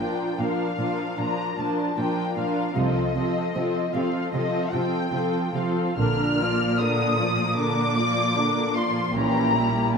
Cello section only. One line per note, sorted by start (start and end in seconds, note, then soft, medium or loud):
0.39 0.47 A#2 soft
0.78 0.86 A#2 soft
1.18 1.26 A#2 soft
1.58 1.66 A#2 soft
1.97 2.05 A#2 soft
2.37 2.45 A#2 soft
2.76 2.84 C3 soft
3.16 3.24 C3 soft
3.56 3.64 C3 soft
3.95 4.03 C3 medium
4.34 4.42 C3 medium
4.73 4.81 C3 medium
5.12 5.20 C3 soft
5.55 5.63 C3 soft
5.98 9.11 A#2 medium
9.15 9.98 A#2 medium